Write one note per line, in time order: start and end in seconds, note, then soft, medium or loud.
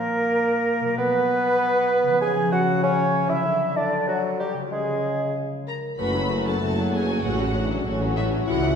0.00 0.91 A#2 soft
0.00 0.93 G3 soft
0.00 0.93 A#3 medium
0.00 0.95 A#3 medium
0.00 0.95 D#4 soft
0.00 0.95 A#4 medium
0.00 0.98 A#4 soft
0.80 2.15 B2 medium
0.84 2.17 F#3 soft
0.89 2.19 F#4 soft
0.93 2.21 D5 soft
0.98 2.19 B3 medium
0.98 2.17 B3 medium
0.98 2.19 B4 medium
2.03 3.38 C#3 medium
2.07 3.41 F3 medium
2.12 3.43 C#4 soft
2.16 3.45 C#5 soft
2.21 3.42 C#3 medium
2.21 2.52 G#4 medium
2.21 2.28 G#5 medium
2.21 2.53 G#5 medium
2.52 2.82 F#4 loud
2.52 2.59 F#5 medium
2.52 2.83 F#5 medium
2.83 3.29 C#4 loud
2.83 3.29 C#5 medium
2.83 3.31 C#5 medium
3.27 4.65 D3 medium
3.27 3.78 E4 medium
3.27 3.78 E5 medium
3.27 3.76 E5 medium
3.32 4.67 F#3 soft
3.36 4.69 F#4 soft
3.40 4.72 B4 soft
3.45 4.55 D3 medium
3.77 4.07 D4 medium
3.77 4.09 D5 medium
3.77 3.91 D5 medium
4.08 4.39 F#3 medium
4.08 4.41 F#4 medium
4.08 4.22 F#4 medium
4.39 4.54 G3 medium
4.39 4.71 G4 medium
4.39 4.54 G4 medium
4.54 5.93 C#3 soft
4.58 5.95 G#3 soft
4.62 5.97 F4 soft
4.67 6.29 C#5 soft
4.71 5.66 C#3 medium
4.71 5.34 G#3 medium
4.71 5.34 G#4 medium
4.71 5.34 G#4 soft
5.67 5.97 A#4 medium
5.67 5.75 A#5 medium
5.99 6.54 F#1 medium
5.99 6.55 F#1 medium
5.99 7.27 F#2 soft
5.99 6.55 F#2 medium
5.99 6.58 F#3 medium
5.99 6.14 A3 medium
5.99 6.13 C#4 soft
5.99 6.14 F#4 soft
5.99 6.43 B4 medium
5.99 6.45 B5 medium
6.14 6.31 F#3 soft
6.14 7.39 A3 soft
6.14 6.30 C#4 soft
6.14 6.29 F#4 soft
6.30 6.46 A3 soft
6.30 6.44 C#4 soft
6.30 6.44 F#4 soft
6.30 6.60 C#5 soft
6.45 6.62 F#3 medium
6.45 6.61 C#4 soft
6.45 6.61 F#4 soft
6.45 7.69 A4 soft
6.45 6.90 A4 medium
6.45 6.92 A5 medium
6.61 7.17 F#1 medium
6.61 7.17 F#2 medium
6.61 6.75 A3 soft
6.61 6.77 A3 soft
6.61 6.77 C#4 soft
6.61 6.77 F#4 soft
6.61 6.92 C#5 soft
6.77 6.93 F#3 medium
6.77 6.92 C#4 soft
6.77 6.92 F#4 soft
6.77 8.01 C#6 medium
6.93 7.09 A3 soft
6.93 7.07 B3 medium
6.93 7.07 C#4 soft
6.93 7.08 F#4 soft
6.93 7.22 G#4 medium
6.93 7.54 C#5 soft
6.93 7.24 G#5 medium
7.08 7.24 F#3 soft
7.08 8.31 C#4 soft
7.08 7.23 C#4 soft
7.08 7.23 F#4 soft
7.24 7.79 A1 medium
7.24 8.50 A2 medium
7.24 7.79 A2 medium
7.24 7.39 A3 medium
7.24 7.54 C#4 medium
7.24 7.39 C#4 soft
7.24 7.38 F#4 medium
7.24 7.82 F#4 medium
7.24 7.86 F#5 medium
7.39 7.55 F#3 soft
7.39 8.50 A3 soft
7.39 7.54 C#4 soft
7.39 7.54 F#4 soft
7.55 7.71 A3 medium
7.55 7.69 C#4 medium
7.55 7.86 D4 medium
7.55 7.69 F#4 soft
7.55 7.85 C#5 soft
7.71 7.87 F#3 medium
7.71 7.85 C#4 soft
7.71 7.85 F#4 soft
7.71 8.50 A4 soft
7.86 8.40 A1 medium
7.86 8.40 A2 medium
7.86 8.01 A3 soft
7.86 8.48 C#4 medium
7.86 8.00 C#4 soft
7.86 8.00 F#4 soft
7.86 8.16 C#5 soft
8.01 8.17 F#3 medium
8.01 8.15 C#4 medium
8.01 8.15 F#4 soft
8.01 8.76 C#6 medium
8.16 8.32 A3 medium
8.16 8.31 C#4 soft
8.16 8.45 E4 medium
8.16 8.30 F#4 medium
8.16 8.76 C#5 medium
8.16 8.25 E5 medium
8.32 8.48 F#3 medium
8.32 8.62 C#4 soft
8.32 8.46 C#4 medium
8.32 8.47 F#4 soft
8.47 8.76 C#2 medium
8.47 8.76 C#3 medium
8.47 8.61 E3 medium
8.47 8.61 G#3 medium
8.47 8.62 C#4 medium
8.47 8.62 E4 medium
8.47 8.76 E4 medium
8.47 8.76 F#4 medium
8.47 8.76 F#5 medium
8.62 8.76 E3 soft
8.62 8.76 G#3 medium
8.62 8.76 C#4 soft
8.62 8.76 E4 soft